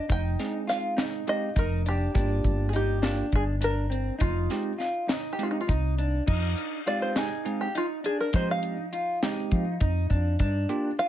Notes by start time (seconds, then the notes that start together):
0.09 F1 D#4 G5, kick, closed hi-hat, shaker
0.39 G#3 C4 D#4 G#4, snare, closed hi-hat
0.67 F4 F5, snare, closed hi-hat
0.97 D#4, snare, closed hi-hat, shaker
1.27 G#3 C4 D#4 G4 D#5, closed hi-hat
1.56 F1 D#4 A#4, kick, closed hi-hat, shaker
1.86 D4 G4, closed hi-hat, shaker
2.14 G1 A#3 D4 F4 G4, kick, closed hi-hat, shaker
2.44 G1, kick, closed hi-hat
2.69 G#4
2.73 D#4 G4, closed hi-hat
3.02 A#3 D4 F4 G4, snare, closed hi-hat, shaker
3.32 G1 G#4, kick, closed hi-hat
3.61 D4 A#4, closed hi-hat, shaker
3.90 C4, closed hi-hat, shaker
4.19 F1 D#4 F4, kick, closed hi-hat, shaker
4.50 G#3 C4 D#4 G4, snare, closed hi-hat, shaker
4.78 F4, snare, closed hi-hat
5.08 D#4, snare, closed hi-hat, shaker
5.33 G4
5.39 G#3 C4 D#4 G4, closed hi-hat, shaker
5.43 F4
5.51 D#4
5.61 F4
5.68 C2 D#4, kick, closed hi-hat, shaker
5.98 D4, closed hi-hat
6.27 F2 D#4, kick, crash
6.57 closed hi-hat
6.86 G#3 C4 D#4 F4 G4 D5, closed hi-hat
7.02 C5
7.16 D#4 G#4, snare, closed hi-hat
7.45 G#3 C4 D#4 G#4, closed hi-hat
7.61 G4
7.75 D#4 F4, closed hi-hat
8.04 D4 G#4, closed hi-hat
8.20 A#4
8.33 F3 G#3 C4 D#4 G4 C5, kick, closed hi-hat
8.51 F5
8.63 closed hi-hat
8.93 F4, closed hi-hat
9.23 G#3 C4 D#4 G4, snare, closed hi-hat
9.51 F3, kick, closed hi-hat
9.80 F2 D#4, kick, closed hi-hat
10.10 F2 D4, kick, closed hi-hat
10.39 G2 D4, kick, closed hi-hat
10.69 A#3 D4 F4 G4, closed hi-hat
10.99 F4 F5, closed hi-hat